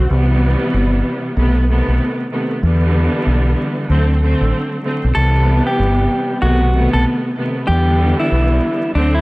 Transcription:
0.08 fingered electric bass C2, string section C3 E3 G3 B3
0.74 fingered electric bass G1
1.36 fingered electric bass B1, string section C3 D#3 A3 B3
1.68 string section C3 D#3 A3 B3
1.88 fingered electric bass B1
2.31 string section C3 D#3 A3 B3
2.63 fingered electric bass E2, string section D3 E3 G3 B3
3.26 fingered electric bass B1
3.89 fingered electric bass D2, string section D3 F#3 A3 C4
4.21 string section D3 F#3 A3 C4
4.41 fingered electric bass A1
4.83 string section D3 F#3 A3 C4
5.04 fingered electric bass B1
5.13 fingered electric bass C2, string section C3 E3 G3 B3, clean electric guitar A4
5.67 clean electric guitar G4
5.79 fingered electric bass G1
6.41 fingered electric bass B1, string section C3 D#3 A3 B3, clean electric guitar F#4
6.73 string section C3 D#3 A3 B3
6.93 fingered electric bass B1, clean electric guitar A4
7.37 string section C3 D#3 A3 B3
7.67 fingered electric bass E2, string section D3 E3 G3 B3, clean electric guitar G4
8.20 clean electric guitar E4
8.32 fingered electric bass B1
8.94 fingered electric bass D2, string section D3 F#3 A3 C4, clean electric guitar D4
9.14 clean electric guitar E4

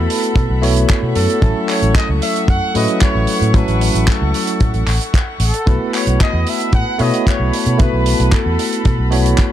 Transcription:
Already playing: tine electric piano A3 B3 E4 F#4 B4, trumpet section A4, string section A4 E5 F#5 B5
0.10 open hi-hat
0.23 closed hi-hat
0.35 fingered electric bass B2, kick, closed hi-hat
0.50 fingered electric bass B1
0.62 tine electric piano A3 B3 E4 F#4 C#5, open hi-hat
0.76 closed hi-hat
0.90 kick, clap, closed hi-hat
1.03 fingered electric bass B2
1.15 fingered electric bass F#2, trumpet section A4, open hi-hat
1.30 closed hi-hat
1.41 fingered electric bass A1, tine electric piano F#3 A3 C#4 E4 A4, string section C#6, kick, closed hi-hat
1.69 trumpet section C#5, clap, open hi-hat
1.82 fingered electric bass A1, closed hi-hat
1.95 trumpet section D#5, kick, clap, closed hi-hat
2.09 fingered electric bass C#2
2.22 trumpet section E5, open hi-hat
2.36 closed hi-hat
2.48 fingered electric bass F#2, trumpet section F#5, kick, closed hi-hat
2.74 fingered electric bass A2, tine electric piano F#3 A3 C#4 E4 B4, trumpet section D#5, open hi-hat
2.88 closed hi-hat
3.01 trumpet section C#5, kick, clap, closed hi-hat
3.15 fingered electric bass A1
3.27 open hi-hat
3.42 fingered electric bass A2, closed hi-hat
3.53 tine electric piano F#3 A3 C#4 E4 A4, trumpet section B4, kick, closed hi-hat
3.68 fingered electric bass A1, closed hi-hat
3.81 open hi-hat
3.95 fingered electric bass A1, closed hi-hat
4.08 trumpet section A4, kick, clap, closed hi-hat
4.22 fingered electric bass C#2
4.34 open hi-hat
4.47 closed hi-hat
4.60 fingered electric bass A2, kick, closed hi-hat
4.74 fingered electric bass A1, closed hi-hat
4.87 fingered electric bass A1, clap, open hi-hat
5.01 closed hi-hat
5.14 kick, clap, closed hi-hat
5.40 fingered electric bass A1, trumpet section A4, open hi-hat
5.54 closed hi-hat
5.66 fingered electric bass B1, tine electric piano A3 B3 E4 F#4 B4, string section B4 A5 B5, kick, closed hi-hat
5.94 trumpet section C#5, clap, open hi-hat
6.07 fingered electric bass B1, closed hi-hat
6.20 trumpet section D#5, kick, clap, closed hi-hat
6.33 fingered electric bass E2
6.47 trumpet section E5, open hi-hat
6.60 closed hi-hat
6.73 fingered electric bass A2, trumpet section F#5, kick, closed hi-hat
6.99 fingered electric bass B2, tine electric piano A3 B3 E4 F#4 C#5, trumpet section D#5, open hi-hat
7.14 closed hi-hat
7.26 trumpet section C#5, kick, clap, closed hi-hat
7.40 fingered electric bass B1
7.53 open hi-hat
7.66 fingered electric bass B2, closed hi-hat
7.78 tine electric piano A3 B3 E4 F#4 B4, trumpet section B4, kick, closed hi-hat
7.93 fingered electric bass B1
8.06 open hi-hat
8.20 fingered electric bass B1, closed hi-hat
8.32 trumpet section A4, kick, clap, closed hi-hat
8.46 fingered electric bass E2
8.59 open hi-hat
8.72 closed hi-hat
8.85 fingered electric bass B2, kick, closed hi-hat
8.98 fingered electric bass B1
9.11 tine electric piano A3 B3 E4 F#4 C#5, open hi-hat
9.26 closed hi-hat
9.38 kick, clap, closed hi-hat

